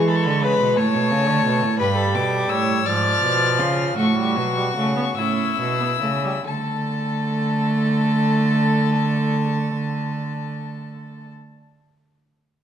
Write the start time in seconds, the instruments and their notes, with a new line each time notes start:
Already playing: cello E3, viola G#3
0.07 violin A4 B5
0.15 violin C#6
0.23 cello D3, violin B5
0.31 violin C#6
0.39 cello C#3, violin B4 B5
0.60 cello B2
0.76 cello A2, viola A3, violin C#5 A5
0.94 cello B2
1.11 cello C#3
1.28 cello D3
1.46 cello B2
1.63 cello A2
1.79 cello G2, viola G3, violin B4 B5
1.97 violin A4
2.14 cello B2, violin D6
2.49 cello A2, violin C#5 E6
2.85 cello G#2, viola F3, violin D5 F6
3.22 cello B2
3.59 cello C#3, violin F4
3.97 cello A2, viola A3, violin F#4 C#6
4.17 viola G3
4.36 cello B2, viola F#3
4.56 viola G3
4.76 cello C#3, viola A3
4.96 viola B3
5.17 cello A2, viola C#4, violin E4 E6
5.59 cello B2
5.80 viola B3
6.02 cello C#3, viola A3
6.24 viola G3
6.46 cello D3, viola A3, violin A4 A5